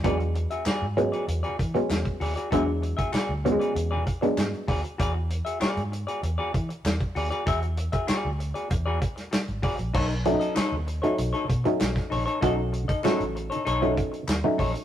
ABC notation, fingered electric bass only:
X:1
M:4/4
L:1/16
Q:1/4=97
K:E
V:1 name="Fingered electric bass" clef=bass
E,,3 z2 G,,2 z E,, z E, z E,, z D,, z | E,,3 z2 =D,,2 z E,,2 z2 G,, z ^D,, z | E,,3 z2 G,,2 z E,, z E, z E,, z D,, z | E,,3 z2 =D,,2 z E,,2 z3 G,,, A,,, ^A,,, |
B,,,3 z2 D,,2 z B,,, z B,, z B,,, z ^A,,, z | B,,,3 z2 A,,,2 z B,,,2 z2 D,, z ^A,,, z |]